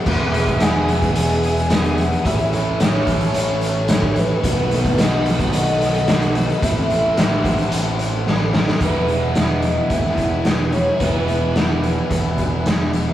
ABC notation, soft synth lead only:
X:1
M:4/4
L:1/8
Q:1/4=110
K:E
V:1 name="Soft synth lead"
z2 g2 g3 f | e c6 B- | B2 d2 d4 | e6 z2 |
B2 d2 e2 z c | B6 z2 |]